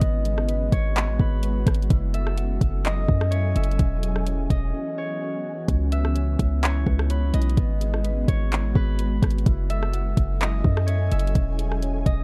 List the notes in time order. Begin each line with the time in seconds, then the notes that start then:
Already playing: B3 B4 C#5 D#5
0.01 G#1 G#3 B3 F#4, kick, closed hi-hat
0.25 G#4, closed hi-hat
0.38 cross-stick
0.48 B4, closed hi-hat
0.72 G#1 C#5, kick, closed hi-hat
0.96 B3, clap, closed hi-hat
1.08 A1
1.20 G#1 G#4 B4, kick
1.43 B4, closed hi-hat
1.66 G#1, kick, cross-stick, closed hi-hat
1.75 closed hi-hat
1.82 closed hi-hat
1.90 F#1 F#3 C#4 E4 A4 G#5, kick, closed hi-hat
2.14 A4 E5, closed hi-hat
2.27 cross-stick
2.37 F#5, closed hi-hat
2.61 F#1, kick, closed hi-hat
2.85 E4 D#5, clap, closed hi-hat
3.08 F#2 A4, kick
3.21 cross-stick
3.31 C#5 E5, closed hi-hat
3.56 F#1 E5, closed hi-hat
3.64 closed hi-hat
3.71 closed hi-hat
3.79 E1 E3 B3 C#4 F#4, kick, closed hi-hat
4.03 G#4, closed hi-hat
4.16 cross-stick
4.27 C#5, closed hi-hat
4.50 E1 D#5, kick, closed hi-hat
4.74 C#4
4.98 G#4 C#5
5.21 C#5
5.68 C#2 C#3 G#3 C#4 E4, kick, closed hi-hat
5.92 B4 E5, closed hi-hat
6.05 cross-stick
6.15 C#5, closed hi-hat
6.39 C#2, kick, closed hi-hat
6.63 C#4 C#5, clap, closed hi-hat
6.86 C#2 B4, kick
6.99 cross-stick
7.10 B4 C#5, closed hi-hat
7.34 B1 D#5, closed hi-hat
7.42 closed hi-hat
7.50 closed hi-hat
7.57 G#1 B3 F#4, kick, closed hi-hat
7.81 G#4, closed hi-hat
7.94 cross-stick
8.04 B4, closed hi-hat
8.28 G#1 C#5, kick, closed hi-hat
8.52 B3, clap, closed hi-hat
8.64 A1
8.75 G#1 G#4 B4, kick
8.99 B4, closed hi-hat
9.22 G#1, kick, cross-stick, closed hi-hat
9.31 closed hi-hat
9.38 closed hi-hat
9.46 F#1 F#3 C#4 E4 A4 G#5, kick, closed hi-hat
9.70 A4 E5, closed hi-hat
9.83 cross-stick
9.93 F#5, closed hi-hat
10.17 F#1, kick, closed hi-hat
10.41 E4 D#5, clap, closed hi-hat
10.64 F#2 A4, kick
10.77 cross-stick
10.87 C#5 E5, closed hi-hat
11.12 F#1 E5, closed hi-hat
11.19 closed hi-hat
11.27 closed hi-hat
11.35 E1 E3 B3 C#4 F#4, kick, closed hi-hat
11.59 G#4, closed hi-hat
11.72 cross-stick
11.82 C#5, closed hi-hat
12.06 E1 D#5, kick, closed hi-hat